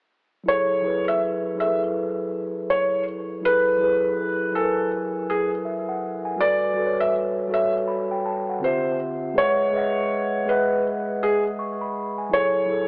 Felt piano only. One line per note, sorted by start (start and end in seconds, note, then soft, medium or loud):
0.48 1.04 C#5 loud
1.08 1.20 E5 medium
1.60 1.79 E5 medium
2.70 3.03 C#5 medium
3.45 4.51 B4 loud
4.55 4.88 A4 medium
5.30 5.49 G#4 medium
6.41 6.96 D5 loud
7.01 7.13 E5 medium
7.54 7.73 E5 medium
8.64 8.96 C5 medium
9.38 10.48 C#5 loud
10.49 10.81 B4 medium
11.23 11.43 G#4 medium
12.33 12.88 C#5 loud